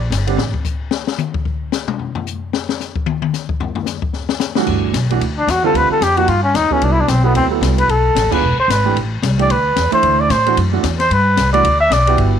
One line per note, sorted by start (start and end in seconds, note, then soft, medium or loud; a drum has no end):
0.10 0.36 G1 medium
0.10 snare medium
0.10 hi-hat pedal medium
0.10 ride medium
0.27 0.37 D3 medium
0.27 0.37 G3 medium
0.27 0.38 C4 medium
0.27 0.38 D4 medium
0.27 ride soft
0.37 0.52 A1 medium
0.37 snare medium
0.54 kick medium
0.65 kick medium
0.65 hi-hat pedal medium
0.91 snare loud
1.07 snare medium
1.18 hi-hat pedal medium
1.18 high tom medium
1.34 kick medium
1.45 kick medium
1.72 snare medium
1.72 hi-hat pedal medium
1.88 mid tom medium
1.99 floor tom soft
2.15 floor tom loud
2.27 hi-hat pedal medium
2.53 snare medium
2.69 snare medium
2.80 snare soft
2.80 hi-hat pedal medium
2.96 kick medium
3.06 high tom loud
3.22 high tom loud
3.33 snare soft
3.33 hi-hat pedal medium
3.49 kick medium
3.60 floor tom medium
3.75 floor tom medium
3.86 snare medium
3.86 hi-hat pedal medium
4.02 kick medium
4.13 snare soft
4.29 snare medium
4.40 snare loud
4.40 hi-hat pedal medium
4.55 4.91 G2 medium
4.55 4.92 E3 medium
4.55 4.92 A3 medium
4.55 4.92 D4 medium
4.55 4.92 F#4 medium
4.55 snare loud
4.66 4.93 G1 medium
4.66 kick medium
4.66 crash medium
4.94 5.19 B1 medium
4.94 snare medium
4.94 hi-hat pedal medium
4.94 ride medium
5.10 5.20 E3 medium
5.10 5.20 A3 medium
5.10 5.20 D4 medium
5.10 5.20 F#4 medium
5.10 ride soft
5.20 5.46 D2 medium
5.20 ride medium
5.38 5.52 D4 medium
5.47 5.73 E2 medium
5.47 5.65 F#4 medium
5.47 snare medium
5.47 hi-hat pedal medium
5.47 ride medium
5.63 5.99 D3 medium
5.63 5.99 G3 medium
5.63 5.99 C4 medium
5.63 5.99 F4 medium
5.63 5.78 A4 medium
5.74 5.89 D2 medium
5.74 5.91 B4 medium
5.74 ride medium
5.90 6.04 A4 medium
5.90 muted upright bass stroke soft
6.01 6.27 F2 medium
6.01 6.18 G4 medium
6.01 snare medium
6.01 hi-hat pedal medium
6.01 ride medium
6.17 6.27 F3 medium
6.17 6.27 A#3 medium
6.17 6.27 D#4 medium
6.17 6.30 F#4 medium
6.17 6.27 G4 medium
6.17 ride soft
6.28 6.54 G2 medium
6.28 6.43 F4 medium
6.28 ride medium
6.43 6.57 C#4 medium
6.54 6.69 D#2 medium
6.54 6.74 D#4 medium
6.54 snare medium
6.54 hi-hat pedal soft
6.54 ride medium
6.70 7.06 F#3 medium
6.70 7.07 B3 medium
6.70 6.85 C#4 medium
6.70 7.07 E4 medium
6.70 7.07 A4 medium
6.70 muted upright bass stroke soft
6.70 kick medium
6.81 7.08 C2 medium
6.81 6.94 D4 medium
6.81 ride medium
6.92 7.02 E4 medium
7.01 7.10 D4 medium
7.08 7.34 B1 medium
7.08 7.26 C4 medium
7.08 snare medium
7.08 hi-hat pedal medium
7.08 ride medium
7.24 7.49 F#3 medium
7.24 7.35 B3 medium
7.24 7.50 B3 medium
7.24 7.50 E4 medium
7.24 7.50 A4 medium
7.35 7.60 D2 medium
7.35 7.45 C4 medium
7.35 ride medium
7.51 7.87 F#3 medium
7.51 7.87 B3 medium
7.51 7.87 E4 medium
7.51 7.87 A4 medium
7.61 7.87 C2 medium
7.61 snare medium
7.61 hi-hat pedal medium
7.61 ride medium
7.78 7.92 B4 medium
7.78 ride medium
7.88 8.14 B1 medium
7.88 8.32 A4 medium
7.88 ride medium
8.15 8.26 A1 medium
8.15 snare medium
8.15 hi-hat pedal medium
8.15 ride medium
8.24 8.32 F1 medium
8.31 8.41 D1 medium
8.31 8.41 B3 medium
8.31 8.41 D4 medium
8.31 8.41 F4 medium
8.31 8.42 G#4 medium
8.31 8.57 B4 medium
8.31 kick medium
8.31 crash medium
8.42 8.57 E1 medium
8.58 8.72 C5 medium
8.58 muted upright bass stroke soft
8.68 8.95 G#1 medium
8.68 8.97 B4 medium
8.68 snare medium
8.68 hi-hat pedal medium
8.68 ride medium
8.84 8.95 E3 medium
8.84 8.95 A3 medium
8.84 8.95 D4 medium
8.84 8.95 G4 medium
8.96 9.22 A1 medium
8.96 ride medium
9.22 9.49 C2 medium
9.22 snare medium
9.22 hi-hat pedal medium
9.22 ride medium
9.38 9.48 E3 medium
9.38 9.48 A3 medium
9.38 9.49 D4 medium
9.38 9.49 G4 medium
9.38 9.53 D5 medium
9.38 ride soft
9.50 9.76 D2 medium
9.50 9.93 B4 medium
9.50 ride medium
9.76 9.91 E2 medium
9.76 snare medium
9.76 hi-hat pedal medium
9.76 ride medium
9.91 10.28 E3 medium
9.91 10.27 A3 medium
9.91 10.28 D4 medium
9.91 10.28 E4 medium
9.91 10.22 C5 medium
9.91 muted upright bass stroke soft
9.91 ride medium
10.03 10.29 D2 medium
10.03 ride medium
10.20 10.32 D5 loud
10.29 10.56 A2 medium
10.29 10.57 C5 medium
10.29 snare medium
10.29 hi-hat pedal medium
10.29 ride medium
10.46 10.56 E3 medium
10.46 10.56 A3 medium
10.46 10.56 D4 medium
10.46 10.57 F#4 medium
10.46 ride soft
10.57 10.83 F#2 medium
10.57 ride medium
10.72 10.82 E3 medium
10.72 10.83 A3 medium
10.72 10.83 D4 medium
10.72 10.83 F#4 medium
10.83 11.10 E2 loud
10.83 snare medium
10.83 hi-hat pedal medium
10.83 ride medium
10.99 11.14 C5 medium
10.99 snare soft
10.99 ride medium
11.10 11.36 G2 medium
11.10 11.52 B4 medium
11.10 ride medium
11.37 11.63 C2 medium
11.37 snare medium
11.37 hi-hat pedal medium
11.37 ride medium
11.53 11.63 E3 medium
11.53 11.63 A3 medium
11.53 11.63 D4 medium
11.53 11.63 F#4 medium
11.53 11.78 D5 medium
11.53 ride medium
11.63 11.90 D2 medium
11.63 ride medium
11.81 11.94 E5 loud
11.90 12.17 B1 medium
11.90 12.19 D5 medium
11.90 snare medium
11.90 hi-hat pedal medium
11.90 ride medium
12.07 12.40 B3 medium
12.07 12.40 E4 medium
12.07 12.40 F#4 medium
12.07 12.40 G4 medium
12.07 ride medium
12.17 12.40 G1 medium
12.17 ride medium